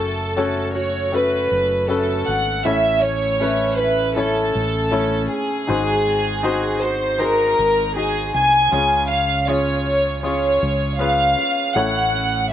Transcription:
Already playing: F#1 F#2 C#4 F#4 A4 C#5
0.00 A3
0.36 A3 C#4 F#4 A4 C#5
0.74 F#4 C#5
1.12 A3 C#4 F#4 A4 B4
1.51 F#1
1.88 A3 C#4 F#4 A4 B4
2.27 G#1 A4 F#5
2.65 A1 A2 C#4 E4 A4 C#5 E5
3.03 C#4 C#5
3.40 C#4 E4 A4 B4
3.78 E4 B4
4.16 C#4 E4 A4 C#5
4.55 A1
4.91 A3 C#4 E4 C#5
5.31 G#4
5.67 G#1 G#2 D#4 F#4 G#4 C5
6.06 C4
6.43 C4 D#4 F#4 G#4 C5
6.82 F#4 C5
7.19 C4 D#4 F#4 G#4 A#4 C5
7.58 G#1
7.96 C4 D#4 F#4 G#4 D#5
8.34 C2 G#4 G#5
8.71 C#2 C#3 C#4 F4 G#4 C#5
9.10 C#4 F5
9.47 C#4 F4 G#4 C#5
9.87 F4
10.23 C#4 F4 G#4 C#5
10.62 C#2
10.99 C#4 F4 G#4 B4 F5
11.38 G#4
11.75 A1 A2 C#4 E4 A4 C#5 F#5
12.15 C#4

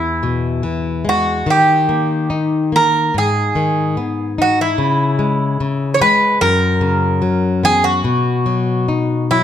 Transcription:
Already playing: E2 E4
0.23 B2
0.63 E3
1.05 G#3
1.09 F#4
1.46 D#3
1.50 G4
1.89 A#3
2.30 D#4
2.72 A#3 A#4
3.14 G#2 G#4
3.56 D#3
3.97 B3
4.38 D#4 F#4
4.61 E4
4.78 C#3
5.19 G#3
5.60 C#3
5.94 C#5
6.01 G#3 B4
6.41 F#2 A#4
6.81 C#3
7.22 F#3
7.63 B3 G#4
7.84 F#4
8.04 B2
8.46 F#3
8.88 D#4
9.31 F#3 E4

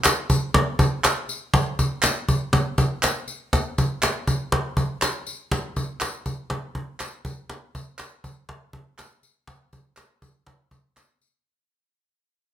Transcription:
0.04 cajon slap, clap, tambourine
0.30 cajon bass, tambourine
0.54 cajon bass, cajon slap
0.79 cajon bass, tambourine
1.04 cajon slap, clap, tambourine
1.29 cajon slap, tambourine
1.54 cajon bass, cajon slap, tambourine
1.79 cajon bass, tambourine
1.91 cajon slap
2.03 cajon slap, clap, tambourine
2.28 cajon bass, tambourine
2.53 cajon bass, cajon slap, tambourine
2.78 cajon bass, tambourine
3.03 cajon slap, clap, tambourine
3.28 cajon slap, tambourine
3.53 cajon bass, cajon slap, tambourine
3.78 cajon bass, tambourine
4.03 cajon slap, clap, tambourine
4.27 cajon bass, tambourine
4.52 cajon bass, cajon slap
4.77 cajon bass, tambourine
5.02 cajon slap, clap, tambourine
5.27 cajon slap, tambourine
5.51 cajon bass, cajon slap, tambourine
5.76 cajon bass, tambourine
6.01 cajon slap, clap, tambourine
6.26 cajon bass, tambourine
6.50 cajon bass, cajon slap
6.75 cajon bass
7.00 cajon slap, clap, tambourine
7.25 cajon bass, tambourine
7.50 cajon slap, tambourine
7.75 cajon bass, tambourine
7.99 cajon slap, clap, tambourine
8.24 cajon bass, tambourine
8.49 cajon bass, cajon slap
8.73 cajon bass
8.99 cajon slap, clap, tambourine
9.23 cajon slap, tambourine
9.47 cajon bass, cajon slap, tambourine
9.73 cajon bass, tambourine
9.85 cajon slap
9.97 cajon slap, clap, tambourine
10.22 cajon bass, tambourine
10.46 cajon bass, cajon slap, tambourine
10.71 cajon bass, tambourine
10.97 cajon slap, clap, tambourine
11.21 cajon slap, tambourine

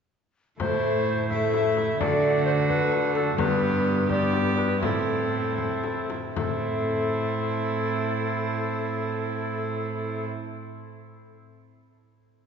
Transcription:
0.57 A2 A3 E4 A4 C5, frame drum
1.26 A3 E4 A4 E5, frame drum
1.31 A3
1.54 frame drum
1.77 frame drum
1.96 D3 A3 D4 F#4 D5
2.00 A3 F#4, frame drum
2.45 C5
2.69 B4, frame drum
2.92 frame drum
3.15 A4, frame drum
3.35 G2 B3 D4 G4 B4, frame drum
3.40 B3
4.05 B3 D4 G4, frame drum
4.10 B3 D5
4.33 frame drum
4.57 B4, frame drum
4.78 A2 C4
4.82 A2 C4 E4 A4, frame drum
5.58 frame drum
5.84 frame drum
6.10 frame drum
6.36 A2 C4 E4 A4, frame drum
6.44 A3
6.51 C4
6.58 E4
6.65 C5

